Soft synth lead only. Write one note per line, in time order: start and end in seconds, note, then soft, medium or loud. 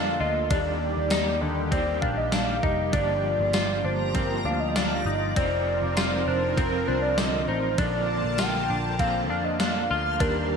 0.00 0.22 F5 loud
0.20 0.51 D#5 loud
0.50 1.42 D5 loud
1.41 1.73 D#5 loud
1.72 2.01 D5 loud
2.02 2.16 F5 loud
2.18 2.35 D#5 medium
2.33 2.65 F5 loud
2.63 2.95 D#5 loud
2.94 3.86 D5 loud
3.85 4.17 C5 medium
4.15 4.47 A#4 loud
4.45 4.61 F5 loud
4.60 4.78 D#5 medium
4.76 5.07 F5 loud
5.05 5.38 D#5 loud
5.36 6.29 D5 loud
6.27 6.57 C5 loud
6.58 6.89 A#4 loud
6.87 7.02 C5 medium
7.02 7.19 D5 medium
7.18 7.49 D#5 loud
7.47 7.80 C5 loud
7.78 8.40 D5 loud
8.39 9.01 G5 loud
8.99 9.29 F5 loud
9.30 9.46 F5 loud
9.44 9.61 D#5 loud
9.60 10.22 F5 loud
10.20 10.57 A#4 loud